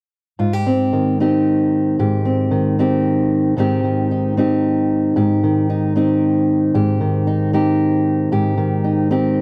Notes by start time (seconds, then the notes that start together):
0.39 G#2 F4
0.53 G4
0.67 C4
0.93 D#3
1.20 C4 D#4 G4
1.99 G#2 G4
2.25 C4
2.51 D#3
2.79 C4 D#4 G4
3.57 G#2 D#3 C4 D#4 G4
3.84 D#3
4.11 D#4
4.37 C4 D#4 G4
5.16 G#2 G4
5.43 D#3
5.70 D#4
5.96 C4 D#4 G4
6.74 G#2 G4
7.00 D#3
7.27 D#4
7.53 C4 D#4 G4
8.32 G#2 G4
8.57 D#3
8.84 D#4
9.11 C4 D#4 G4